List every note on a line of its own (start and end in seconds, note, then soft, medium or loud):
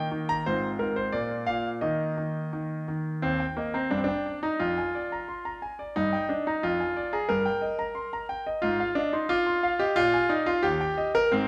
0.00 0.10 D#3 soft
0.00 0.42 A#3 soft
0.00 0.42 D#4 soft
0.12 0.45 D#3 medium
0.29 0.46 A#5 medium
0.46 0.78 G#2 soft
0.46 1.10 C4 soft
0.46 1.10 F4 soft
0.46 0.66 C5 medium
0.79 1.13 G#2 soft
0.79 0.96 A#4 medium
0.96 1.13 C5 medium
1.12 1.46 A#2 soft
1.12 1.79 A#3 soft
1.12 1.79 F4 soft
1.12 1.44 D5 medium
1.47 1.81 A#2 soft
1.47 1.68 F5 medium
1.81 2.16 D#3 soft
1.81 3.19 A#3 soft
1.81 3.19 D#4 soft
1.81 2.88 D#5 medium
2.17 2.51 D#3 soft
2.53 2.87 D#3 soft
2.88 3.22 D#3 soft
3.22 3.40 D#2 medium
3.22 3.43 C4 medium
3.40 3.58 G5 soft
3.57 3.74 A#3 medium
3.57 3.75 D#5 soft
3.74 3.91 C4 medium
3.74 3.91 A#5 soft
3.91 4.08 G2 soft
3.91 3.98 D4 medium
3.97 4.05 C4 medium
4.04 4.38 D4 medium
4.08 4.26 G5 soft
4.26 4.44 D5 soft
4.43 4.60 D#4 medium
4.43 4.60 A#5 soft
4.59 4.77 F2 soft
4.59 5.58 F4 medium
4.78 4.95 G#5 soft
4.95 5.12 D5 soft
5.12 5.29 A#5 soft
5.28 5.45 C6 soft
5.45 5.63 A#5 soft
5.62 5.80 G#5 soft
5.79 5.96 D5 soft
5.96 6.13 G2 medium
5.96 6.26 D#4 medium
6.13 6.30 G5 soft
6.29 6.46 D4 medium
6.29 6.47 D#5 soft
6.47 6.63 D#4 medium
6.47 6.64 A#5 soft
6.63 6.80 F2 medium
6.63 7.13 F4 medium
6.80 6.98 G#5 soft
6.97 7.14 D5 soft
7.13 7.30 G#4 medium
7.13 7.30 A#5 soft
7.29 7.46 G2 medium
7.29 8.25 A#4 medium
7.45 7.64 G5 soft
7.62 7.80 D#5 soft
7.79 7.97 A#5 soft
7.95 8.12 C6 soft
8.13 8.31 A#5 soft
8.29 8.47 G5 soft
8.47 8.63 D#5 soft
8.62 8.79 G#2 medium
8.62 8.92 F4 medium
8.80 8.97 F5 medium
8.95 9.13 D4 medium
8.95 9.14 D#5 soft
9.13 9.30 D#4 medium
9.13 9.31 C6 soft
9.29 9.80 F4 medium
9.29 9.47 D6 soft
9.46 9.64 C6 medium
9.63 9.81 F5 medium
9.79 9.97 G4 medium
9.79 9.97 D#5 medium
9.96 10.13 A#2 medium
9.96 10.30 F4 loud
10.14 10.31 G#5 medium
10.29 10.47 D#4 medium
10.29 10.48 D5 soft
10.46 10.64 F4 medium
10.46 10.64 C6 medium
10.63 10.80 D#2 medium
10.63 11.11 G4 medium
10.81 10.99 G5 medium
10.98 11.16 D#5 medium
11.15 11.32 A#4 loud
11.15 11.32 A#5 medium
11.32 11.48 G#2 medium
11.32 11.48 C4 medium